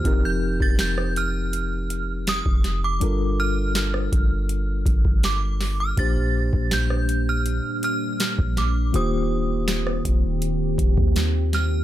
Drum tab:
HH |x---x-x-x-x-x-x-|x---x-x-x-x-x-o-|x---x-x-x-x-x-x-|x---x-x-x-x-x-x-|
SD |----or------o-o-|----or------o-o-|----or------o-o-|----or------o-o-|
BD |o--o---------o--|------o---oo----|o--o---------o--|------o---oo----|